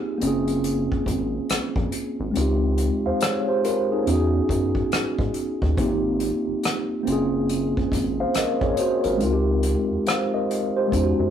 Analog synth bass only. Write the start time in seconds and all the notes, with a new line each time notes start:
0.22 F#1
1.07 G#1
1.50 A#1
1.76 A#1
2.20 G#1
2.36 C#2
3.06 E2
4.07 E2
4.50 F#2
4.93 G#2
5.19 G#2
5.62 D#2
5.78 G#1
6.48 F#1
7.07 F#1
7.92 G#1
8.36 A#1
8.62 A#1
9.05 G#1
9.22 C#2
9.91 E2
10.93 E2
11.20 F#2